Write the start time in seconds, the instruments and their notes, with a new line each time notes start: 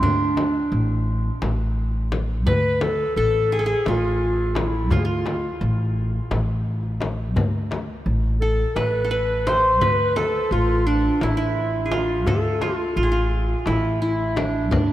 Already playing: qanun C4 E4
0.02 upright bass D2, qanun D4, clarinet D4, darbuka dum, frame drum
0.37 darbuka tek, frame drum
0.72 upright bass A1
1.42 upright bass A1, darbuka tek, frame drum
2.12 frame drum
2.46 upright bass D2, qanun B4, clarinet B4, darbuka dum, frame drum
2.81 clarinet A4, darbuka tek, frame drum
3.16 upright bass A1, clarinet A4, qanun A4
3.52 clarinet G#4, qanun G#4
3.59 qanun A4
3.66 qanun G#4
3.86 upright bass A1, clarinet F4, qanun F4, darbuka tek, frame drum
4.55 clarinet E4, darbuka tek, frame drum
4.91 upright bass D2, clarinet F4, qanun F4, darbuka dum, frame drum
4.99 clarinet G#4
5.05 qanun F4, clarinet F4, darbuka ka
5.26 darbuka tek, frame drum
5.61 upright bass A1
6.31 upright bass A1, darbuka tek, frame drum
6.66 darbuka ka
6.83 darbuka ka
7.01 darbuka tek, frame drum
7.36 upright bass D2, darbuka dum, frame drum
7.71 darbuka tek, frame drum
8.06 upright bass A1
8.41 clarinet A4, qanun A4
8.76 upright bass A1, clarinet B4, qanun B4, darbuka tek, frame drum
9.04 qanun A4
9.11 qanun B4, clarinet B4
9.47 qanun C5, clarinet C5, darbuka tek, frame drum
9.81 upright bass D2, clarinet B4, qanun B4, frame drum, darbuka dum
10.16 qanun A4, clarinet A4, darbuka tek, frame drum
10.51 upright bass A1, clarinet F4, qanun F4
10.87 qanun D4, clarinet D4
11.21 upright bass A1, clarinet E4, qanun E4, darbuka tek, frame drum
11.30 clarinet D4
11.35 clarinet E4, qanun E4
11.86 qanun G#4
11.91 clarinet F4, qanun F4, darbuka tek, frame drum
12.26 upright bass D2, clarinet A4, qanun A4, darbuka dum, frame drum
12.61 qanun F4, clarinet F4, darbuka tek, frame drum
12.96 upright bass A1, qanun F4, clarinet F4
13.03 qanun G#4
13.12 qanun F4
13.66 upright bass A1, qanun E4, clarinet E4, darbuka tek, frame drum
14.02 qanun E4, clarinet E4
14.36 qanun D4, clarinet D4, darbuka tek, frame drum
14.71 upright bass D2, qanun D4, clarinet D4, darbuka dum, frame drum
14.89 darbuka ka